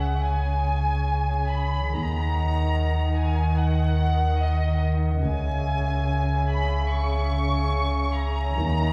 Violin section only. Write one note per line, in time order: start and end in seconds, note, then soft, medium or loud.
0.00 0.27 F#5 soft
0.26 1.51 G#5 soft
1.50 1.92 B5 medium
1.92 3.16 A#5 soft
3.16 3.56 G#5 soft
3.57 4.40 F#5 medium
4.41 4.83 D#5 soft
5.25 6.45 G#5 medium
6.50 6.91 B5 medium
6.91 8.16 C#6 medium
8.15 8.93 A#5 medium